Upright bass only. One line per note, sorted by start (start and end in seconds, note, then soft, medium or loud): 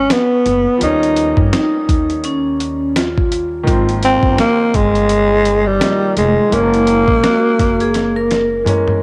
0.46 0.65 F#1 medium
0.81 1.32 D#2 medium
1.37 1.50 G2 medium
1.89 3.63 D#2 medium
3.67 4.18 G#1 loud
4.23 4.36 G1 medium
4.74 5.77 G1 medium
6.17 6.36 F1 medium
6.52 7.03 F#1 loud
7.08 7.21 A#1 medium
7.60 8.63 F#1 medium